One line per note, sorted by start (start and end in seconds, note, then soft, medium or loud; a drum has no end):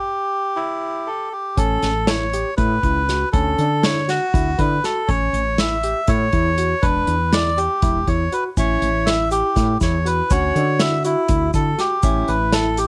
0.00 1.29 G4 medium
0.56 1.08 E4 medium
1.07 1.33 A4 medium
1.32 1.58 G4 medium
1.57 1.77 A1 medium
1.57 1.89 C#4 medium
1.57 2.10 A4 medium
1.57 kick medium
1.57 closed hi-hat medium
1.82 2.43 A1 medium
1.82 snare soft
1.82 closed hi-hat medium
2.07 2.24 E4 medium
2.07 2.54 C#5 medium
2.07 snare loud
2.07 closed hi-hat medium
2.33 2.49 G4 medium
2.33 closed hi-hat medium
2.57 2.78 A2 medium
2.57 2.74 E4 medium
2.57 3.29 B4 medium
2.57 kick loud
2.57 closed hi-hat medium
2.83 3.23 C#2 medium
2.83 3.00 E4 medium
2.83 kick medium
2.83 closed hi-hat medium
3.09 3.25 F#4 medium
3.09 snare soft
3.09 closed hi-hat medium
3.32 3.53 D2 medium
3.32 3.65 C#4 medium
3.32 3.85 A4 medium
3.32 kick medium
3.32 closed hi-hat medium
3.58 4.18 D3 medium
3.58 closed hi-hat soft
3.83 4.00 E4 medium
3.83 4.09 C#5 medium
3.83 snare loud
3.83 closed hi-hat medium
4.08 4.24 F#4 medium
4.08 4.60 F#4 medium
4.08 snare soft
4.08 closed hi-hat medium
4.34 4.54 D2 medium
4.34 4.50 E4 medium
4.34 kick loud
4.34 closed hi-hat medium
4.58 4.79 D3 medium
4.58 4.75 E4 medium
4.58 4.84 B4 medium
4.58 kick medium
4.58 closed hi-hat medium
4.84 5.00 F#4 medium
4.84 5.10 A4 medium
4.84 snare soft
4.84 closed hi-hat medium
5.08 5.29 A1 medium
5.08 5.41 C#4 medium
5.08 5.60 C#5 loud
5.08 kick loud
5.08 closed hi-hat medium
5.33 5.93 A1 medium
5.33 closed hi-hat medium
5.58 5.75 E4 medium
5.58 6.10 E5 medium
5.58 snare loud
5.58 closed hi-hat medium
5.83 6.00 G4 medium
5.83 closed hi-hat medium
6.08 6.28 A2 medium
6.08 6.24 E4 medium
6.08 6.85 C#5 loud
6.08 kick loud
6.08 closed hi-hat medium
6.33 6.73 E2 medium
6.33 6.49 E4 medium
6.33 kick medium
6.33 closed hi-hat medium
6.58 6.74 F#4 medium
6.58 closed hi-hat medium
6.82 7.03 E1 medium
6.82 7.14 D4 medium
6.82 7.34 B4 medium
6.82 kick medium
6.82 closed hi-hat medium
7.07 7.67 E2 medium
7.07 closed hi-hat medium
7.33 7.49 E4 medium
7.33 7.59 D5 medium
7.33 snare loud
7.33 closed hi-hat medium
7.57 8.09 G4 medium
7.57 7.74 G4 medium
7.57 closed hi-hat medium
7.82 8.02 E1 medium
7.82 7.99 E4 medium
7.82 kick loud
7.82 closed hi-hat medium
8.07 8.27 E2 medium
8.07 8.23 E4 medium
8.07 8.33 C#5 medium
8.07 kick medium
8.07 closed hi-hat soft
8.32 8.48 F#4 medium
8.32 8.44 B4 medium
8.32 closed hi-hat medium
8.57 8.77 A1 medium
8.57 8.89 C#4 medium
8.57 10.36 E4 medium
8.57 9.09 C#5 medium
8.57 kick medium
8.57 closed hi-hat medium
8.57 shaker medium
8.82 9.41 A1 medium
8.82 closed hi-hat medium
9.06 9.23 E4 medium
9.06 9.29 E5 medium
9.06 snare loud
9.06 closed hi-hat medium
9.31 9.47 G4 medium
9.31 9.78 G4 medium
9.31 closed hi-hat medium
9.31 shaker soft
9.55 9.76 A2 medium
9.55 9.72 E4 medium
9.55 kick medium
9.55 snare soft
9.55 closed hi-hat medium
9.55 shaker soft
9.80 10.20 E2 medium
9.80 9.97 E4 medium
9.80 10.07 C#5 medium
9.80 kick medium
9.80 snare soft
9.80 closed hi-hat medium
9.80 shaker soft
10.06 10.21 F#4 medium
10.06 10.32 B4 medium
10.06 closed hi-hat medium
10.30 10.50 D2 medium
10.30 10.62 C#4 medium
10.30 12.10 F#4 loud
10.30 10.82 C#5 medium
10.30 kick medium
10.30 closed hi-hat medium
10.30 shaker medium
10.55 11.14 D3 medium
10.55 closed hi-hat medium
10.79 10.96 E4 medium
10.79 11.03 E5 medium
10.79 snare loud
10.79 closed hi-hat medium
11.04 11.51 E4 medium
11.04 11.20 F#4 medium
11.04 closed hi-hat medium
11.04 shaker soft
11.28 11.49 D2 medium
11.28 11.45 E4 medium
11.28 kick loud
11.28 closed hi-hat medium
11.28 shaker soft
11.54 11.74 D3 medium
11.54 11.70 E4 medium
11.54 11.80 A4 medium
11.54 kick medium
11.54 closed hi-hat medium
11.54 shaker medium
11.78 11.94 F#4 medium
11.78 12.30 G4 medium
11.78 snare soft
11.78 closed hi-hat medium
11.78 shaker soft
12.03 12.23 A1 medium
12.03 12.35 C#4 medium
12.03 12.87 E4 medium
12.03 kick loud
12.03 closed hi-hat medium
12.03 shaker medium
12.28 12.87 A1 medium
12.28 12.54 B4 medium
12.28 closed hi-hat medium
12.53 12.69 E4 medium
12.53 12.79 A4 medium
12.53 snare loud
12.53 closed hi-hat medium
12.77 12.87 G4 medium
12.77 closed hi-hat medium
12.77 shaker soft